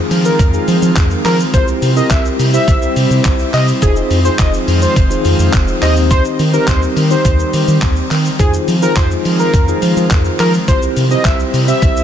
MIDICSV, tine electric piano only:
0, 0, Header, 1, 2, 480
1, 0, Start_track
1, 0, Key_signature, -4, "minor"
1, 0, Tempo, 571429
1, 1290, Time_signature, 4, 2, 24, 8
1, 10112, End_track
2, 0, Start_track
2, 0, Title_t, "Tine electric piano"
2, 0, Program_c, 0, 4
2, 0, Note_on_c, 0, 60, 82
2, 0, Note_on_c, 0, 63, 73
2, 0, Note_on_c, 0, 65, 71
2, 0, Note_on_c, 0, 68, 87
2, 326, Note_off_c, 0, 60, 0
2, 327, Note_off_c, 0, 63, 0
2, 327, Note_off_c, 0, 65, 0
2, 328, Note_off_c, 0, 68, 0
2, 449, Note_on_c, 0, 60, 79
2, 450, Note_on_c, 0, 63, 73
2, 451, Note_on_c, 0, 65, 72
2, 453, Note_on_c, 0, 68, 88
2, 1145, Note_off_c, 0, 60, 0
2, 1146, Note_off_c, 0, 63, 0
2, 1146, Note_off_c, 0, 65, 0
2, 1147, Note_off_c, 0, 68, 0
2, 1289, Note_on_c, 0, 60, 77
2, 1290, Note_on_c, 0, 64, 73
2, 1291, Note_on_c, 0, 67, 70
2, 1293, Note_on_c, 0, 72, 87
2, 1588, Note_off_c, 0, 60, 0
2, 1588, Note_off_c, 0, 64, 0
2, 1589, Note_off_c, 0, 67, 0
2, 1590, Note_off_c, 0, 72, 0
2, 1649, Note_on_c, 0, 60, 81
2, 1651, Note_on_c, 0, 64, 74
2, 1652, Note_on_c, 0, 67, 73
2, 1653, Note_on_c, 0, 70, 91
2, 2047, Note_off_c, 0, 60, 0
2, 2048, Note_off_c, 0, 64, 0
2, 2048, Note_off_c, 0, 67, 0
2, 2049, Note_off_c, 0, 70, 0
2, 2129, Note_on_c, 0, 60, 82
2, 2130, Note_on_c, 0, 64, 74
2, 2131, Note_on_c, 0, 67, 76
2, 2133, Note_on_c, 0, 72, 84
2, 2924, Note_off_c, 0, 60, 0
2, 2925, Note_off_c, 0, 64, 0
2, 2926, Note_off_c, 0, 67, 0
2, 2927, Note_off_c, 0, 72, 0
2, 3208, Note_on_c, 0, 63, 83
2, 3209, Note_on_c, 0, 65, 75
2, 3210, Note_on_c, 0, 68, 73
2, 3212, Note_on_c, 0, 72, 88
2, 3507, Note_off_c, 0, 63, 0
2, 3508, Note_off_c, 0, 65, 0
2, 3508, Note_off_c, 0, 68, 0
2, 3509, Note_off_c, 0, 72, 0
2, 3568, Note_on_c, 0, 63, 81
2, 3570, Note_on_c, 0, 65, 73
2, 3571, Note_on_c, 0, 68, 74
2, 3573, Note_on_c, 0, 72, 90
2, 4165, Note_off_c, 0, 63, 0
2, 4166, Note_off_c, 0, 65, 0
2, 4167, Note_off_c, 0, 68, 0
2, 4168, Note_off_c, 0, 72, 0
2, 4287, Note_on_c, 0, 63, 82
2, 4289, Note_on_c, 0, 65, 75
2, 4290, Note_on_c, 0, 68, 73
2, 4292, Note_on_c, 0, 72, 88
2, 4878, Note_off_c, 0, 63, 0
2, 4881, Note_off_c, 0, 72, 0
2, 4886, Note_on_c, 0, 60, 82
2, 4888, Note_on_c, 0, 63, 74
2, 4889, Note_on_c, 0, 67, 75
2, 4890, Note_off_c, 0, 65, 0
2, 4890, Note_off_c, 0, 68, 0
2, 4891, Note_on_c, 0, 72, 93
2, 5385, Note_off_c, 0, 60, 0
2, 5386, Note_off_c, 0, 63, 0
2, 5387, Note_off_c, 0, 67, 0
2, 5388, Note_off_c, 0, 72, 0
2, 5486, Note_on_c, 0, 60, 82
2, 5488, Note_on_c, 0, 63, 74
2, 5489, Note_on_c, 0, 67, 78
2, 5490, Note_on_c, 0, 72, 87
2, 5886, Note_off_c, 0, 60, 0
2, 5887, Note_off_c, 0, 63, 0
2, 5887, Note_off_c, 0, 67, 0
2, 5888, Note_off_c, 0, 72, 0
2, 5969, Note_on_c, 0, 60, 76
2, 5970, Note_on_c, 0, 63, 76
2, 5972, Note_on_c, 0, 67, 72
2, 5973, Note_on_c, 0, 72, 90
2, 6764, Note_off_c, 0, 60, 0
2, 6765, Note_off_c, 0, 63, 0
2, 6766, Note_off_c, 0, 67, 0
2, 6766, Note_off_c, 0, 72, 0
2, 7048, Note_on_c, 0, 63, 81
2, 7050, Note_on_c, 0, 65, 75
2, 7051, Note_on_c, 0, 68, 71
2, 7053, Note_on_c, 0, 72, 88
2, 7347, Note_off_c, 0, 63, 0
2, 7348, Note_off_c, 0, 65, 0
2, 7349, Note_off_c, 0, 68, 0
2, 7350, Note_off_c, 0, 72, 0
2, 7409, Note_on_c, 0, 63, 80
2, 7411, Note_on_c, 0, 65, 74
2, 7412, Note_on_c, 0, 68, 74
2, 7413, Note_on_c, 0, 72, 88
2, 8006, Note_off_c, 0, 63, 0
2, 8007, Note_off_c, 0, 65, 0
2, 8007, Note_off_c, 0, 68, 0
2, 8008, Note_off_c, 0, 72, 0
2, 8129, Note_on_c, 0, 63, 80
2, 8131, Note_on_c, 0, 65, 76
2, 8132, Note_on_c, 0, 68, 73
2, 8133, Note_on_c, 0, 72, 87
2, 8825, Note_off_c, 0, 63, 0
2, 8826, Note_off_c, 0, 65, 0
2, 8827, Note_off_c, 0, 68, 0
2, 8827, Note_off_c, 0, 72, 0
2, 8970, Note_on_c, 0, 60, 80
2, 8972, Note_on_c, 0, 64, 75
2, 8974, Note_on_c, 0, 67, 72
2, 8975, Note_on_c, 0, 72, 91
2, 9268, Note_off_c, 0, 60, 0
2, 9269, Note_off_c, 0, 64, 0
2, 9270, Note_off_c, 0, 67, 0
2, 9271, Note_off_c, 0, 72, 0
2, 9329, Note_on_c, 0, 60, 79
2, 9331, Note_on_c, 0, 64, 75
2, 9332, Note_on_c, 0, 67, 76
2, 9333, Note_on_c, 0, 72, 92
2, 9727, Note_off_c, 0, 60, 0
2, 9728, Note_off_c, 0, 64, 0
2, 9728, Note_off_c, 0, 67, 0
2, 9729, Note_off_c, 0, 72, 0
2, 9809, Note_on_c, 0, 60, 80
2, 9811, Note_on_c, 0, 64, 74
2, 9812, Note_on_c, 0, 67, 74
2, 9813, Note_on_c, 0, 72, 86
2, 10112, Note_off_c, 0, 60, 0
2, 10112, Note_off_c, 0, 64, 0
2, 10112, Note_off_c, 0, 67, 0
2, 10112, Note_off_c, 0, 72, 0
2, 10112, End_track
0, 0, End_of_file